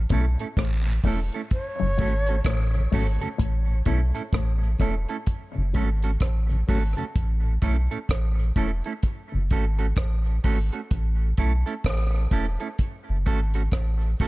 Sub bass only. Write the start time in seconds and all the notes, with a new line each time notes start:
0.11 B1
0.58 A1
1.04 E1
1.81 F#1
2.00 G#1
2.46 A1
2.93 G#1
3.40 A1
3.87 B1
4.33 A1
4.80 E1
5.57 F#1
5.76 G#1
6.22 A1
6.70 G#1
7.16 A1
7.63 B1
8.10 A1
8.56 E1
9.34 F#1
9.52 G#1
9.97 A1
10.45 G#1
10.92 A1
11.39 B1
11.85 A1
12.32 E1
13.09 F#1
13.28 G#1
13.73 A1
14.21 G#1